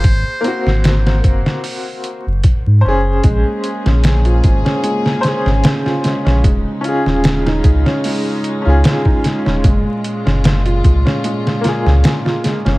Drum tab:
HH |x-x-x-x-o-x-x---|x-x-xxx-x-x-x-x-|x-x-x-x-o-x-x-x-|x-x-xxx-x-x-x-x-|
SD |---ooo-o--------|---oo--o-ooooooo|---ooo-o----o-oo|---oo--o-ooooooo|
BD |o-----o-----o---|o-----o---------|o-----o------o--|o-----o---------|